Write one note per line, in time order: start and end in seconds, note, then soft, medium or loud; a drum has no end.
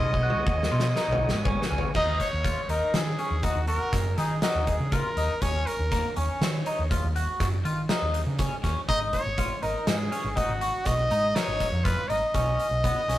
0.00 1.91 B3 medium
0.00 0.14 F4 medium
0.00 1.91 G#4 medium
0.00 1.92 C#5 medium
0.00 1.47 D#5 loud
0.00 1.92 D#5 medium
0.09 0.31 B1 medium
0.14 kick medium
0.23 0.54 F#4 medium
0.30 mid tom medium
0.47 0.68 D#2 medium
0.47 kick loud
0.63 snare medium
0.72 0.93 B2 medium
0.72 0.87 F4 medium
0.80 snare medium
0.96 1.28 D#4 medium
0.96 snare medium
1.08 1.30 B1 medium
1.12 floor tom medium
1.29 snare medium
1.34 1.55 G#2 medium
1.45 1.61 C#4 medium
1.45 kick loud
1.45 floor tom medium
1.62 snare medium
1.70 1.81 C#2 medium
1.70 1.86 C#4 medium
1.78 floor tom medium
1.95 2.17 D#2 medium
1.95 2.27 D#4 medium
1.95 2.18 D#5 loud
1.95 kick medium
1.95 crash medium
2.20 2.71 C#5 medium
2.20 kick medium
2.20 closed hi-hat medium
2.33 2.54 D#2 medium
2.44 2.60 F4 medium
2.44 kick medium
2.44 closed hi-hat medium
2.69 2.80 D#2 medium
2.69 3.01 D#4 medium
2.69 2.96 A#4 medium
2.69 closed hi-hat medium
2.94 3.16 D#3 medium
2.94 3.45 G#4 medium
2.94 snare medium
2.94 closed hi-hat medium
3.19 3.35 C#4 medium
3.19 closed hi-hat soft
3.31 3.52 D#2 medium
3.43 3.59 D#4 medium
3.43 3.67 F#4 medium
3.43 kick medium
3.43 closed hi-hat medium
3.56 3.77 D#2 medium
3.67 4.00 F#4 medium
3.67 4.19 A#4 medium
3.67 closed hi-hat soft
3.92 4.14 F#2 medium
3.92 kick medium
3.92 snare soft
3.92 closed hi-hat medium
4.18 4.39 D#3 medium
4.18 4.34 D#4 medium
4.18 4.42 G#4 medium
4.18 snare soft
4.18 closed hi-hat soft
4.42 4.74 D#4 medium
4.42 4.69 F#4 medium
4.42 snare loud
4.42 closed hi-hat medium
4.55 4.77 D#2 medium
4.67 4.94 G#4 medium
4.67 kick medium
4.67 closed hi-hat soft
4.80 5.01 C#3 medium
4.92 5.08 F4 medium
4.92 5.43 A#4 medium
4.92 kick medium
4.92 closed hi-hat medium
5.17 5.28 D#2 medium
5.17 5.33 D#4 medium
5.17 closed hi-hat medium
5.41 5.63 D#2 medium
5.41 5.73 C#4 medium
5.41 5.68 C#5 medium
5.41 kick medium
5.41 closed hi-hat medium
5.67 6.16 A#4 medium
5.67 closed hi-hat medium
5.79 6.01 D#2 medium
5.92 6.07 A#3 medium
5.92 kick medium
5.92 closed hi-hat medium
6.16 6.27 D#2 medium
6.16 6.48 C#4 medium
6.16 7.12 C#5 medium
6.16 closed hi-hat medium
6.41 6.62 D#3 medium
6.41 snare medium
6.41 closed hi-hat medium
6.66 6.82 D#4 medium
6.66 closed hi-hat medium
6.79 7.00 D#2 medium
6.91 7.07 F4 medium
6.91 kick medium
6.91 closed hi-hat medium
7.04 7.25 D#2 medium
7.16 7.47 F#4 medium
7.16 closed hi-hat medium
7.40 7.62 F#2 medium
7.40 kick loud
7.40 snare soft
7.40 closed hi-hat medium
7.65 7.86 D#3 medium
7.65 7.81 F4 medium
7.65 closed hi-hat medium
7.89 8.21 D#4 medium
7.89 snare loud
7.89 closed hi-hat medium
8.02 8.23 D#2 medium
8.14 closed hi-hat medium
8.26 8.48 C#3 medium
8.39 8.55 C#4 medium
8.39 kick medium
8.39 closed hi-hat medium
8.63 8.74 D#2 medium
8.63 8.79 C#4 medium
8.63 kick medium
8.63 snare soft
8.63 closed hi-hat soft
8.88 9.10 G#1 medium
8.88 9.20 D#4 medium
8.88 9.00 D#5 loud
8.88 kick medium
8.88 closed hi-hat medium
9.13 9.64 C#5 loud
9.13 kick medium
9.13 closed hi-hat medium
9.26 9.47 G#1 medium
9.38 9.54 F4 medium
9.38 kick medium
9.38 closed hi-hat medium
9.63 9.74 G#1 medium
9.63 9.94 D#4 medium
9.63 9.89 A#4 medium
9.63 closed hi-hat medium
9.87 10.09 G#2 medium
9.87 10.39 G#4 medium
9.87 snare medium
9.87 closed hi-hat medium
10.12 10.28 C#4 medium
10.12 closed hi-hat medium
10.25 10.46 G#1 medium
10.36 10.52 D#4 medium
10.36 10.88 F#4 medium
10.36 kick medium
10.36 closed hi-hat medium
10.50 10.71 G#1 medium
10.61 10.93 F#4 medium
10.61 closed hi-hat soft
10.85 11.08 B1 medium
10.85 11.37 D#5 loud
10.85 kick medium
10.85 snare soft
10.85 closed hi-hat medium
11.11 11.32 G#2 medium
11.11 11.27 D#4 medium
11.11 closed hi-hat medium
11.35 11.67 D#4 medium
11.35 11.86 C#5 medium
11.35 snare medium
11.35 closed hi-hat medium
11.48 11.69 G#1 medium
11.60 kick medium
11.60 snare soft
11.60 closed hi-hat medium
11.72 11.94 F2 medium
11.84 12.01 F4 medium
11.84 12.10 B4 medium
11.84 kick loud
11.84 snare soft
11.84 closed hi-hat medium
12.09 12.21 G#1 medium
12.09 12.25 D#4 medium
12.09 13.18 D#5 medium
12.09 closed hi-hat soft
12.34 12.56 B1 medium
12.34 12.66 C#4 medium
12.34 kick medium
12.34 closed hi-hat medium
12.59 closed hi-hat soft
12.71 12.93 B1 medium
12.84 13.00 B3 medium
12.84 kick medium
12.84 closed hi-hat medium
13.08 13.18 B1 medium
13.08 13.18 C#4 medium
13.08 snare soft
13.08 closed hi-hat medium